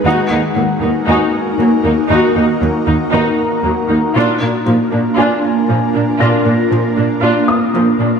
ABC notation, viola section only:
X:1
M:4/4
L:1/8
Q:1/4=117
K:Ebm
V:1 name="Viola section"
[EG] [B,E] [G,B,] [B,E] [EG] z [G,B,] [B,E] | [EG] [B,E] [G,B,] [B,E] [EG] z [G,B,] [B,E] | [=DF] [B,D] [F,B,] [B,D] [DF] z [F,B,] [B,D] | [=DF] [B,D] [F,B,] [B,D] [DF] z [F,B,] [B,D] |]